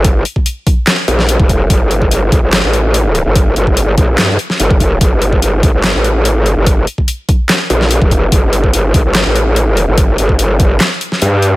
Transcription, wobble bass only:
Already playing: G1
1.08 A#1
1.40 F1
1.70 G1
2.32 A#1
2.43 G1
2.64 A1
3.26 G1
3.56 G1
3.98 A#1
4.18 G2
4.60 G1
5.01 G1
5.63 A#1
5.74 G1
5.95 A1
6.38 G#1
6.57 G1
7.70 A#1
8.02 F1
8.32 G1
8.94 A#1
9.05 G1
9.26 A1
9.88 G1
10.18 G1
11.22 G2

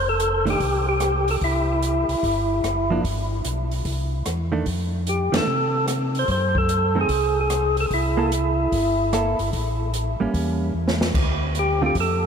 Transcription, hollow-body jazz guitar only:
0.45 D#3 A3 D4
2.90 F3 A#3 D4
4.52 D#3 A3 D4
5.32 D#3 A3 D4
6.95 D#3 A3 C4
8.17 A#3 E4 A4
9.13 A#3 E4 A4
10.20 G3 A#3 C#4
11.82 D3 A3 C4 F4

